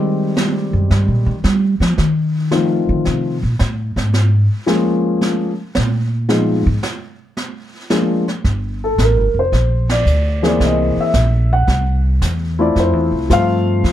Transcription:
Already playing: D#3 G3 G#3 C4 G4
0.37 snare
0.73 F#2
0.91 G2, brush sweep, snare
1.08 A#2
1.26 D#3
1.44 G3, snare
1.80 F3, snare
1.98 D#3, brush sweep, snare
2.51 D#3 F3 A3 C4 F4, snare
2.89 D3
3.05 C3, brush sweep, snare
3.43 A#2
3.59 A2, snare
3.96 G#2, snare
4.13 brush sweep, snare
4.66 F3 G#3 A#3 C#4 G#4, snare
5.21 brush sweep, snare
5.75 A#2, snare
6.29 F3 G#3 B3 D#4 G#4, brush sweep, snare
6.66 G#2
6.83 snare
7.37 brush sweep, snare
7.90 F3 G#3 A#3 D4 G#4, snare
8.28 snare
8.44 G1, brush sweep, kick, snare
8.84 A4
8.98 A1, kick, snare, hi-hat pedal
9.02 A#4
9.16 G1
9.34 F1
9.39 C5
9.52 A#1, brush sweep, kick, snare
9.89 D5, snare, ride
10.05 D2, hi-hat pedal
10.43 E3 A#3 C4 G#4, snare
10.47 D5
10.60 C2, brush sweep, kick, snare
10.65 D#5
10.96 muted upright bass stroke
11.01 E5
11.14 A#1, kick, snare, hi-hat pedal
11.53 F#5
11.67 C2, brush sweep, kick, snare
12.22 E2, kick, snare, hi-hat pedal
12.59 A3 C4 E4 F4 D5
12.76 F2 C5, brush sweep, kick, snare
12.93 E2
13.12 C2
13.30 G2 F3 A3 C4 F4 F5, kick, snare, hi-hat pedal
13.84 F2, brush sweep, kick, snare

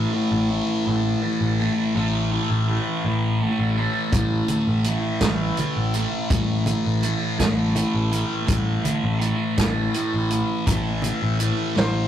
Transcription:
Already playing: A2 E3 A3
0.13 A2 E3 A3
0.31 A1
0.39 E3
0.49 A2 E3 A3
0.86 A1 A2 E3 A3
1.01 A3
1.22 A2 E3 A3
1.41 A1
1.59 A2 E3 A3
1.95 A1 A2 E3 A3
2.26 A2
2.31 A2 E3 A3
2.50 A1
2.68 A2 E3 A3
2.85 E3
3.05 A1 A2 E3 A3
3.41 A2 E3 A3
3.48 A3
3.59 A1
3.78 A2 E3 A3
4.08 A3
4.12 A1 A2 E3 A3, kick, closed hi-hat, high conga
4.31 low conga
4.48 A2 E3 A3, closed hi-hat, low conga
4.67 A1
4.71 A2
4.84 A2 E3 A3, closed hi-hat, low conga
5.21 A1 A2 E3 A3, kick, snare, closed hi-hat, high conga
5.34 E3
5.57 A2 E3 A3, closed hi-hat, low conga
5.76 A1
5.94 A2 E3 A3, closed hi-hat, low conga
6.12 low conga
6.29 A1 A2 E3 A3, kick, closed hi-hat, high conga
6.48 low conga
6.58 A3
6.66 A2 E3 A3, closed hi-hat, low conga
6.86 A1
7.03 A2 E3 A3, closed hi-hat, low conga
7.22 A2
7.39 A1 A2 E3 A3, kick, snare, closed hi-hat, high conga
7.75 A2 E3 A3, closed hi-hat, low conga
7.79 E3
7.94 A1
8.11 A2 E3 A3, closed hi-hat, low conga
8.29 low conga
8.41 A3
8.47 A1 A2 E3 A3, kick, closed hi-hat, high conga
8.84 A2 E3 A3, closed hi-hat, low conga
9.03 A1 A3
9.19 A2 E3 A3, closed hi-hat, low conga
9.57 A1 A2 E3 A3, kick, snare, closed hi-hat, high conga
9.69 A2
9.94 A2 E3 A3, closed hi-hat
10.14 A1
10.30 A2 E3 A3, closed hi-hat, low conga
10.50 low conga
10.66 A1 A2 E3 A3, kick, closed hi-hat, high conga, low conga
10.89 A3
11.02 A2 E3 A3, closed hi-hat, low conga
11.22 A1
11.39 A2 E3 A3, closed hi-hat, low conga
11.51 A3
11.76 A1 A2 E3 A3 C5, snare, high conga
11.95 low conga

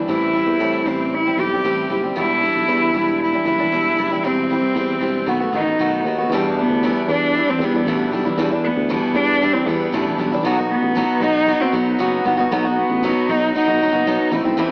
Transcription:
0.08 A1 A2 E3 G3 C4 E4
0.12 E4
0.33 E3 G3 C4 E4
0.47 E2
0.59 A2 E3 G3 C4 E4
0.85 A1 E3 G3 C4 E4
1.15 E4
1.25 G3 C4 E4
1.37 B1 E3 G3 C4 E4 G4
1.51 G3 C4 E4
1.64 A1 A2 E3 G3 C4 E4
1.89 F#1 E3 G3 C4 E4
2.03 G3 C4 E4
2.16 E1 E2 B2 E3 G3 D4 E4
2.41 E3 G3 D4 E4
2.56 B1
2.68 E2 B2 E3 G3 D4 E4
2.93 E1 E3 G3 D4 E4
3.23 E4
3.33 E3 G3 D4 E4
3.45 F#1 E3 G3 D4 E4
3.58 E3 G3 D4 E4
3.71 E1 E2 B2 E3 G3 D4 E4
3.97 F#1 E3 G3 D4 E4
4.10 E3 G3 D4 E4
4.23 E1 E3 G3 C4 E4
4.50 E3 G3 C4 E4
4.61 C2
4.75 E2 E3 G3 C4 E4
5.00 E1 E3 G3 C4 E4
5.26 B1 B2 D#3 A3 B3 F#4
5.30 B3
5.40 A3 B3 F#4
5.52 A1 D#3 A3 B3 D#4 F#4
5.66 A3 B3 F#4
5.79 B1 B2 D#3 A3 B3 F#4
6.04 D#2 D#3 A3 B3 F#4
6.18 A3 B3 F#4
6.30 E2 B2 E3 G3 D4
6.34 E4
6.59 B3
6.69 D2
6.83 E2 B2 E3 G3 D4 E4
7.08 E2 E3 G3 D4 E4
7.35 E3 G3 D4 E4
7.48 E3 G3 C4 D4 E4
7.59 E2 E3 G3 D4
7.63 B3 E4
7.74 E3 G3 D4 E4
7.85 A1 E2 B2 E3 G3 D4 E4
8.11 B1 E3 G3 D4 E4
8.25 E3 G3 D4 E4
8.38 E2 B2 E3 G3 D4 E4
8.50 E3 G3 D4 E4
8.64 B3
8.76 D2
8.89 E2 B2 E3 G3 D4 E4
9.15 E2 E3 G3 D4 E4
9.41 E3 G3 D4 E4
9.53 E3 G3 C4 D4 E4
9.66 E2 E3 G3 B3 D4 E4
9.92 A1 E2 B2 E3 G3 D4 E4
10.18 B1 E3 G3 D4 E4
10.32 E3 G3 D4 E4
10.43 B1 B2 F#3 B3 D#4 F#4
10.57 B3 D#4 F#4
10.72 B3
10.82 A1
10.95 B2 F#3 B3 D#4 F#4
11.20 B1 F#3 B3 D#4 F#4
11.46 F#3 B3 D#4 F#4
11.60 B3 C4 D#4 F#4
11.73 B1 F#3 B3 D#4 F#4
11.98 F#1 B2 F#3 B3 D#4 F#4
12.24 G1 F#3 B3 D#4 F#4
12.37 B3 D#4 F#4
12.51 B1 B2 F#3 B3 D#4 F#4
12.64 B3 D#4 F#4
12.78 B3
12.90 A1
13.03 B2 F#3 B3 D#4 F#4
13.29 B1 F#3 B3 D#4 F#4
13.54 F#3 B3 D#4 F#4
13.68 B1 B3 D#4 F#4
13.80 E1 F#3 B3 D#4 F#4
13.92 F#1 B3 D#4 F#4
14.06 B1 B2 F#3 B3 D#4 F#4
14.31 A1 E3 A3 C4 E4
14.43 B1 A3 C4 E4
14.57 A1 A2 E3 A3 C4 E4

